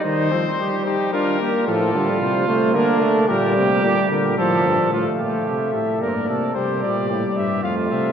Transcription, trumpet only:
X:1
M:3/4
L:1/8
Q:1/4=111
K:Fmix
V:1 name="Trumpet"
E C G E F G | F4 D2 | G4 A2 | F G2 A B A |
G2 G2 F2 |]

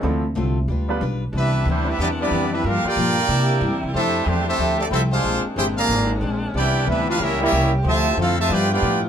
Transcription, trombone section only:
X:1
M:4/4
L:1/8
Q:"Swing" 1/4=184
K:C
V:1 name="Trombone section"
z8 | [G,B,E]2 [E,G,C] [G,B,E] [G,B,D] [G,B,D]2 [G,B,E] | [_B,DF] [B,DG]6 z | [A,CE]2 [D,A,C] [A,CE]2 [D,A,D] E [_A,DF]- |
[_A,DF] z G [D,F,_B,]2 z3 | [B,EG]2 [G,B,E] F [G,^A,E] [G,A,E]2 z | [C,F,A,]2 [A,CF] [C,F,A,] [B,DG] [B,DG]2 z |]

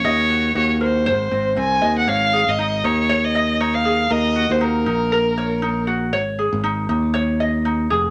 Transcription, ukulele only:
X:1
M:4/4
L:1/8
Q:"Swing 16ths" 1/4=118
K:Abmix
V:1 name="Ukulele"
e G G B c C C e | d A E E d e E A | B G E E B d E G | d A E E d e E A |]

